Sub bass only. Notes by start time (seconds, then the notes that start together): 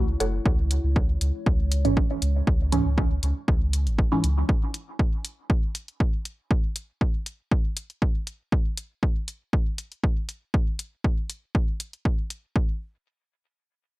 Already playing: C#2
0.20 F#1
0.45 C#2
0.84 C#2
1.21 C#2
1.46 C#2
1.85 G#1
2.22 C#2
2.47 C#2
2.86 C#2
3.23 C#2
3.48 C#2
3.87 G#1
4.24 C#2